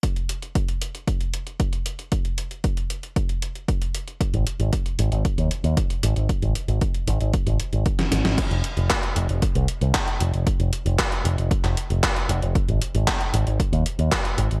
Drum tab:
CC |----------------|----------------|----------------|----------------|
HH |xxxxxxxxxxxxxxxx|xxxxxxxxxxxxxxxx|xxxxxxxxxxxxxxxx|xxxxxxxxxxxxxxxx|
CP |----------------|----------------|----------------|----------------|
SD |----------------|----------------|----------------|-------------ooo|
BD |o---o---o---o---|o---o---o---o---|o---o---o---o---|o---o---o---o---|

CC |x---------------|----------------|----------------|
HH |xxxxxxxxxxxxxxxx|xxxxxxxxxxxxxxxx|xxxxxxxxxxxxxxxx|
CP |----x-------x---|----x----x--x---|----x-------x---|
SD |----------------|----------------|----------------|
BD |o---o---o---o---|o---o---o---o---|o---o---o---o---|